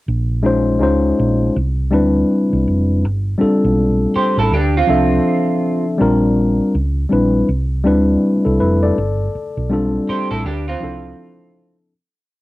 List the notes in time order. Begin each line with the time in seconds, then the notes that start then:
0.08 A#1
0.43 G#3 C#4 D#4 F4 C5
0.79 C#2 G#3 C#4 D#4 F4 C5
1.19 A#1
1.56 C2
1.91 D2 G3 C4 D4 E4 B4
2.53 C2
2.68 F1
3.05 G1
3.38 G3 C4 D4 F4 A4
3.42 muted fingered electric bass stroke
3.64 B1
4.16 G4 C5, muted fingered electric bass stroke
4.37 A1 E4 A4
4.52 D2 D4 G4
4.77 C4 F4
4.87 C2 F3 C4 D4 A4 E5
5.98 A#1 G3 C4 D4 F4 A#4
6.75 C#2
7.09 A#1 G3 C4 D4 E4 B4
7.49 C2
7.84 D2 G3 C4 D4 E4 B4
8.45 C2 E4 A4
8.60 F1 E4 B4
8.83 A4 D5
8.98 G1
9.35 muted fingered electric bass stroke
9.57 B1
9.69 G3 C4 D4 F4 A4
10.09 G4 C5, muted fingered electric bass stroke
10.31 A1 E4 A4
10.45 D2 D4 G4
10.68 C4 F4
10.80 C2 F3 C4 D4 E4 A4